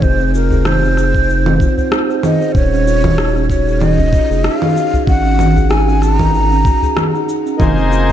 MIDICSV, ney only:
0, 0, Header, 1, 2, 480
1, 0, Start_track
1, 0, Tempo, 631579
1, 16, Time_signature, 4, 2, 24, 8
1, 6173, End_track
2, 0, Start_track
2, 0, Title_t, "Ney"
2, 0, Program_c, 0, 77
2, 21, Note_on_c, 0, 72, 99
2, 259, Note_off_c, 0, 72, 0
2, 266, Note_on_c, 0, 70, 95
2, 503, Note_on_c, 0, 72, 99
2, 515, Note_off_c, 0, 70, 0
2, 1498, Note_off_c, 0, 72, 0
2, 1698, Note_on_c, 0, 75, 87
2, 1921, Note_off_c, 0, 75, 0
2, 1938, Note_on_c, 0, 73, 117
2, 2627, Note_off_c, 0, 73, 0
2, 2657, Note_on_c, 0, 73, 91
2, 2897, Note_on_c, 0, 75, 107
2, 2908, Note_off_c, 0, 73, 0
2, 3377, Note_on_c, 0, 77, 105
2, 3388, Note_off_c, 0, 75, 0
2, 3849, Note_off_c, 0, 77, 0
2, 3854, Note_on_c, 0, 78, 113
2, 4333, Note_on_c, 0, 80, 99
2, 4345, Note_off_c, 0, 78, 0
2, 4575, Note_on_c, 0, 81, 114
2, 4587, Note_off_c, 0, 80, 0
2, 4697, Note_off_c, 0, 81, 0
2, 4697, Note_on_c, 0, 82, 114
2, 5536, Note_off_c, 0, 82, 0
2, 6173, End_track
0, 0, End_of_file